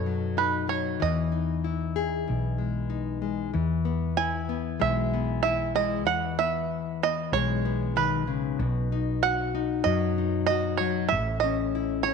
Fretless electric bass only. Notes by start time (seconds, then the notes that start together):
Already playing: F#2
1.02 E2
2.29 B1
3.54 E2
4.81 B1
6.07 E2
7.32 B1
8.59 B1
9.85 F#2
11.12 A1